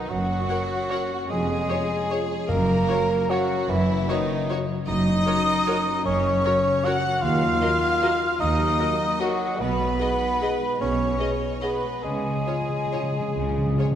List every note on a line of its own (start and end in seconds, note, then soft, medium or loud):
0.00 1.31 F#3 soft
0.00 0.10 B3 soft
0.00 0.11 D#4 medium
0.00 0.69 F#4 soft
0.00 0.10 D#5 medium
0.08 0.42 F#1 medium
0.08 1.31 F#2 medium
0.08 0.42 F#2 medium
0.08 1.13 F#3 medium
0.08 1.29 F#4 medium
0.08 1.32 F#4 medium
0.08 1.30 F#5 medium
0.28 1.09 A#3 soft
0.48 0.90 C#4 soft
0.48 0.64 F#4 medium
0.48 0.64 A#4 medium
0.48 0.57 A#4 soft
0.48 0.57 C#5 soft
0.48 0.58 F#5 medium
0.70 1.31 F#4 medium
0.90 1.68 C#4 medium
0.90 1.05 F#4 medium
0.90 0.98 A#4 medium
0.90 1.05 A#4 medium
0.90 0.98 C#5 medium
0.90 0.99 F#5 soft
1.11 1.31 A#3 soft
1.29 1.62 F1 medium
1.29 1.62 F2 medium
1.29 2.51 F2 medium
1.29 2.21 G#3 medium
1.29 2.47 G#4 medium
1.29 2.23 G#4 medium
1.29 2.21 G#5 medium
1.48 2.29 G#3 medium
1.69 2.09 C#4 soft
1.69 1.84 F4 medium
1.69 1.77 G#4 medium
1.69 1.77 C#5 medium
1.69 1.84 C#5 medium
1.69 1.78 C#5 medium
1.89 3.09 C#5 medium
2.10 2.87 C#4 medium
2.10 2.24 F4 medium
2.10 2.19 G#4 medium
2.10 2.18 C#5 medium
2.10 2.19 C#5 medium
2.10 2.25 C#5 medium
2.30 2.50 G#3 soft
2.48 2.82 F#1 medium
2.48 3.68 F#2 medium
2.48 3.06 F#2 medium
2.48 2.82 F#2 medium
2.48 3.32 A#3 loud
2.48 3.32 A#4 medium
2.48 3.30 A#4 medium
2.48 3.31 A#5 medium
2.68 3.49 F#3 medium
2.88 3.29 C#4 medium
2.88 2.96 F#4 medium
2.88 3.05 F#4 medium
2.88 2.96 C#5 medium
2.88 3.04 C#5 medium
2.88 2.98 C#5 medium
3.10 4.27 C#5 medium
3.29 3.68 F#3 medium
3.29 4.07 C#4 medium
3.29 3.44 F#4 medium
3.29 3.71 F#4 medium
3.29 3.38 F#4 medium
3.29 3.69 F#4 medium
3.29 3.43 C#5 medium
3.29 3.38 C#5 medium
3.29 3.39 C#5 medium
3.29 3.69 F#5 medium
3.50 4.67 F#3 medium
3.69 4.02 F#1 medium
3.69 4.86 F#2 medium
3.69 4.02 F#2 medium
3.69 4.11 E3 medium
3.69 4.09 E4 medium
3.69 4.10 E5 medium
3.88 4.89 C#3 medium
4.08 4.50 D#3 medium
4.08 4.47 C#4 medium
4.08 4.49 D#4 medium
4.08 4.50 D#4 medium
4.08 4.23 F#4 medium
4.08 4.17 F#4 medium
4.08 4.16 C#5 medium
4.08 4.23 C#5 medium
4.08 4.17 C#5 medium
4.08 4.50 D#5 medium
4.29 7.24 C#5 medium
4.48 5.24 C#4 medium
4.48 4.63 F#4 medium
4.48 4.58 F#4 medium
4.48 4.63 C#5 medium
4.48 4.58 C#5 medium
4.68 5.04 F#3 soft
4.87 5.19 F#1 medium
4.87 6.04 F#2 medium
4.87 5.19 F#2 medium
4.87 6.07 D#4 loud
4.87 6.01 D#5 loud
4.87 6.01 D#6 loud
5.05 5.85 F#3 medium
5.25 5.65 C#4 medium
5.25 5.34 F#4 medium
5.25 5.41 F#4 medium
5.25 5.34 A#4 medium
5.25 5.41 A#4 medium
5.25 5.35 C#5 medium
5.46 6.63 A#4 medium
5.66 6.43 C#4 medium
5.66 5.75 F#4 medium
5.66 5.81 F#4 medium
5.66 5.75 A#4 medium
5.66 5.81 A#4 medium
5.66 5.75 C#5 medium
5.86 7.03 F#3 soft
6.05 6.37 F#1 medium
6.05 7.24 F#2 medium
6.05 6.38 F#2 medium
6.05 6.86 C#4 medium
6.05 6.86 C#5 medium
6.05 6.84 C#5 medium
6.05 6.86 C#6 medium
6.24 7.24 C#3 medium
6.43 6.84 C#4 medium
6.43 6.59 F#4 medium
6.43 6.53 F#4 medium
6.43 6.58 A#4 medium
6.43 6.53 A#4 medium
6.43 6.53 C#5 medium
6.65 7.61 A#4 medium
6.83 7.24 C#4 medium
6.83 6.97 F#4 medium
6.83 7.23 F#4 loud
6.83 6.94 F#4 medium
6.83 6.97 A#4 medium
6.83 6.94 A#4 medium
6.83 6.93 C#5 medium
6.83 7.24 F#5 medium
6.83 7.23 F#5 medium
6.83 7.23 F#6 medium
7.04 8.57 F#3 medium
7.21 7.54 D#2 medium
7.21 7.55 D#2 medium
7.21 8.39 D#3 medium
7.21 8.39 F4 loud
7.21 8.42 F5 medium
7.21 8.39 F5 medium
7.21 8.42 F6 loud
7.42 8.20 D#4 medium
7.60 7.75 F#4 medium
7.60 7.70 F#4 medium
7.60 7.75 A#4 medium
7.60 8.01 A#4 medium
7.60 7.70 A#4 medium
7.60 7.69 D#5 medium
7.82 8.99 F#4 medium
8.02 8.10 F#4 medium
8.02 8.17 F#4 medium
8.02 8.78 A#4 medium
8.02 8.10 A#4 medium
8.02 8.16 A#4 medium
8.02 8.10 D#5 medium
8.21 9.39 D#4 medium
8.40 8.73 D#2 medium
8.40 9.62 D#3 medium
8.40 9.22 D#4 loud
8.40 9.22 D#5 medium
8.40 9.19 D#5 medium
8.40 9.22 D#6 medium
8.59 9.62 F#3 medium
8.78 8.94 F#4 medium
8.78 8.88 F#4 medium
8.78 8.94 A#4 medium
8.78 9.19 A#4 medium
8.78 8.88 A#4 medium
8.78 8.87 D#5 medium
9.00 9.62 F#4 medium
9.20 9.62 F#3 medium
9.20 9.35 F#4 medium
9.20 9.61 F#4 medium
9.20 9.29 F#4 medium
9.20 9.62 F#4 medium
9.20 9.35 A#4 medium
9.20 9.62 A#4 medium
9.20 9.29 A#4 medium
9.20 9.28 D#5 medium
9.20 9.63 F#5 medium
9.41 9.99 D#4 soft
9.59 9.94 B1 medium
9.59 9.94 B2 medium
9.59 10.80 B2 medium
9.59 10.64 B3 medium
9.59 10.78 B4 medium
9.59 10.81 B4 loud
9.59 10.82 B5 medium
9.80 10.61 G#3 medium
10.00 10.40 D#4 soft
10.00 10.08 G#4 medium
10.00 10.15 G#4 medium
10.00 10.15 B4 medium
10.00 10.08 D#5 medium
10.21 11.40 G#4 medium
10.41 11.19 D#4 soft
10.41 10.49 G#4 medium
10.41 10.57 G#4 medium
10.41 10.57 B4 medium
10.41 10.51 D#5 medium
10.62 11.82 G#3 soft
10.80 11.13 B1 medium
10.80 12.06 B2 medium
10.80 11.13 B2 medium
10.80 11.32 C#4 medium
10.80 11.60 C#5 medium
10.80 11.32 C#5 medium
10.80 11.32 C#6 medium
11.01 12.06 B3 soft
11.18 11.61 D#4 soft
11.18 11.34 G#4 medium
11.18 11.28 G#4 medium
11.18 11.34 B4 medium
11.18 11.28 D#5 medium
11.41 12.69 G#4 medium
11.61 12.01 B3 medium
11.61 12.06 D#4 soft
11.61 11.70 G#4 medium
11.61 11.77 G#4 soft
11.61 12.04 B4 medium
11.61 12.05 B4 medium
11.61 11.77 B4 soft
11.61 11.70 D#5 soft
11.61 12.01 B5 medium
11.83 12.24 G#3 soft
12.02 12.40 C#2 medium
12.02 13.34 C#3 medium
12.02 12.40 C#3 medium
12.02 12.11 C#3 soft
12.02 13.95 G#3 medium
12.02 13.95 G#4 medium
12.02 13.95 G#5 medium
12.12 12.18 C#3 soft
12.25 12.34 C#3 soft
12.25 13.13 G#3 soft
12.35 12.42 C#3 soft
12.46 12.62 F4 soft
12.46 12.55 F4 soft
12.46 12.92 F4 soft
12.46 12.55 G#4 soft
12.46 12.62 C#5 medium
12.46 12.55 C#5 soft
12.52 12.60 C#3 soft
12.61 12.68 C#3 soft
12.69 12.76 C#3 soft
12.69 13.95 G#4 soft
12.78 12.85 C#3 soft
12.86 12.94 C#3 soft
12.92 13.02 C#3 soft
12.92 13.00 F4 medium
12.92 13.08 F4 soft
12.92 13.77 F4 soft
12.92 13.00 G#4 soft
12.92 13.08 C#5 soft
12.92 13.01 C#5 soft
13.03 13.11 C#3 medium
13.12 13.19 C#3 soft
13.12 13.95 G#3 soft
13.20 13.27 C#3 medium
13.28 13.34 C#3 soft
13.35 13.71 C#2 medium
13.35 13.41 C#3 soft
13.35 13.95 C#3 medium
13.35 13.71 C#3 medium
13.42 13.49 C#3 medium
13.50 13.57 C#3 medium
13.56 13.65 C#3 medium
13.56 13.95 C#4 soft
13.67 13.74 C#3 medium
13.75 13.82 C#3 medium
13.75 13.92 F4 soft
13.75 13.86 F4 soft
13.75 13.95 F4 soft
13.75 13.86 G#4 soft
13.75 13.93 C#5 soft
13.75 13.87 C#5 medium
13.83 13.90 C#3 medium
13.91 13.95 C#3 medium